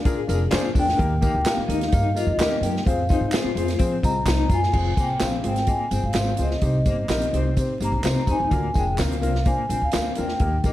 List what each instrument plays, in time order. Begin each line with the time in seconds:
Already playing: vibraphone F5
0.05 upright bass D3, grand piano D4 F4 G#4 A#4, clean electric guitar G#4, kick, closed hi-hat, tambourine
0.27 upright bass F1, grand piano D4 F4 G#4 A#4, closed hi-hat, tambourine
0.51 upright bass F2, grand piano D4 F4 G#4 C5, clean electric guitar F4, snare, clap, closed hi-hat, tambourine
0.75 upright bass E2, clean electric guitar D4, grand piano D4 F4 G#4 A#4, kick, open hi-hat, tambourine
0.79 vibraphone G5
0.89 snare
0.97 upright bass D#2, grand piano A#3 D#4 G4 A#4, kick, closed hi-hat
1.21 grand piano A#3 D#4 G4 A#4, clean electric guitar A#3, kick, closed hi-hat, tambourine
1.34 upright bass D2
1.40 vibraphone G5
1.45 grand piano A#3 D#4 G4 A#4, vibraphone F5, snare, clap, closed hi-hat, tambourine
1.57 muted upright bass stroke
1.68 upright bass D#2, grand piano A#3 D#4 G4 A#4, clean electric guitar D#4, closed hi-hat, tambourine
1.81 snare, closed hi-hat
1.92 upright bass G2, grand piano A#3 D#4 G4 A#4, clean electric guitar D#4, vibraphone F5, kick, closed hi-hat, tambourine
2.15 grand piano A#3 D#4 G4 A#4, clean electric guitar F4, vibraphone D#5, closed hi-hat, tambourine
2.26 upright bass F2
2.37 upright bass D#2, grand piano A#3 D#4 G4, clean electric guitar G4, snare, clap, closed hi-hat, tambourine
2.41 grand piano A#4
2.61 upright bass F#2, grand piano A#3 D#4 G4, vibraphone G5, closed hi-hat, tambourine
2.65 grand piano A#4
2.76 snare
2.86 upright bass F2, grand piano C4 F4 G#4 C5, vibraphone F5, kick, closed hi-hat
3.09 grand piano C4 F4 G#4 C5, clean electric guitar D#4, kick, closed hi-hat, tambourine
3.20 upright bass G#2
3.32 grand piano C4 F4 G#4 C5, clean electric guitar F4, snare, clap, closed hi-hat, tambourine
3.44 muted upright bass stroke
3.55 upright bass F2, grand piano C4 F4 G#4 C5, closed hi-hat
3.68 snare, closed hi-hat
3.79 upright bass F3, clean electric guitar C4, grand piano C4 F4 G#4 C5, kick, closed hi-hat, tambourine
4.02 upright bass C2, grand piano C4 F4 G#4 D#5, vibraphone A#5, kick, closed hi-hat, tambourine
4.25 upright bass C2, clean electric guitar D#4, grand piano C5 D#5, snare, clap, closed hi-hat, tambourine
4.49 upright bass F#2, clean electric guitar F4, grand piano D5 F5, kick, closed hi-hat, tambourine
4.54 vibraphone G#5
4.63 snare
4.72 upright bass F1, grand piano C4 F4 G#4 C5, clean electric guitar F4, kick, crash
4.96 upright bass C2, clean electric guitar A#3, grand piano C4 F4 G#4 C5, kick, closed hi-hat, tambourine
5.01 vibraphone G5
5.20 upright bass A#1, grand piano C4 F4 G#4 C5, clean electric guitar C4, vibraphone F5, snare, clap, closed hi-hat, tambourine
5.43 upright bass G#1, grand piano C4 F4 G#4 C5, closed hi-hat
5.48 vibraphone G5
5.56 snare, closed hi-hat
5.61 vibraphone G5
5.67 clean electric guitar A#3, grand piano C4 F4 G#4 D#5, vibraphone G#5, kick, closed hi-hat, tambourine
5.91 upright bass G1, grand piano C4 F4 G#4 C5, clean electric guitar C4, closed hi-hat, tambourine
6.03 upright bass G#1, vibraphone F5
6.13 upright bass G#1, grand piano C4 F4 G#4 C5, clean electric guitar C4, snare, clap, closed hi-hat, tambourine
6.37 upright bass C#2, grand piano C4 F4 G#4 C5, closed hi-hat, tambourine
6.42 vibraphone D#5
6.51 snare
6.62 upright bass C2, grand piano C4 D#4 G4 C5, kick, closed hi-hat, tambourine
6.85 upright bass G1, clean electric guitar A#3, grand piano C4 D#4 G4 C5, kick, closed hi-hat, tambourine
6.90 vibraphone D#5
7.08 upright bass A#1, grand piano C4 D#4 G4 A#4, clean electric guitar C4, snare, clap, closed hi-hat, tambourine
7.22 closed hi-hat
7.33 upright bass C2, grand piano C4 D#4 G4 C5, clean electric guitar C4, closed hi-hat
7.37 vibraphone C5
7.57 grand piano C4 D#4 G4 C5, kick, closed hi-hat, tambourine
7.61 vibraphone C5
7.80 upright bass G1, clean electric guitar A#3, grand piano C4 D#4 G4 C5, vibraphone A#5, closed hi-hat, tambourine
7.92 upright bass A#1
8.04 upright bass C2, grand piano C4 D#4 G4 C5, clean electric guitar C4, snare, clap, closed hi-hat, tambourine
8.27 upright bass E2, grand piano C4 D#4 G4 C5, clean electric guitar D#4, kick, closed hi-hat, tambourine
8.31 vibraphone G#5
8.39 upright bass D#2
8.51 upright bass D2, grand piano A#3 D4 F4 A#4, clean electric guitar A#3, kick, closed hi-hat, tambourine
8.73 upright bass F1, clean electric guitar G#3, grand piano A#3 D4 F4 A#4, kick, closed hi-hat, tambourine
8.78 vibraphone G5
8.98 upright bass D2, grand piano A#3 D4 F4 A#4, clean electric guitar C4, vibraphone F5, snare, clap, closed hi-hat, tambourine
9.11 closed hi-hat
9.21 upright bass C2, grand piano A#3 D4 F4 A#4, closed hi-hat, tambourine
9.35 snare
9.45 grand piano A#3 D4 F4 C5, clean electric guitar A#3, vibraphone G#5, kick, closed hi-hat, tambourine
9.69 upright bass A#1, grand piano A#3 D4 F4 A#4, clean electric guitar C4, closed hi-hat, tambourine
9.81 upright bass D2, vibraphone F5
9.92 upright bass D2, grand piano A#3 D4 F4 A#4, clean electric guitar C4, snare, clap, closed hi-hat, tambourine
10.15 upright bass E2, grand piano A#3 D4 F4 A#4, closed hi-hat, tambourine
10.20 vibraphone G5
10.28 snare
10.40 upright bass D#2, grand piano A#3 D#4 G4 A#4, kick, closed hi-hat
10.63 upright bass A#1, grand piano A#3 D#4 G4 A#4, clean electric guitar A#3, kick, closed hi-hat, tambourine
10.68 vibraphone D#5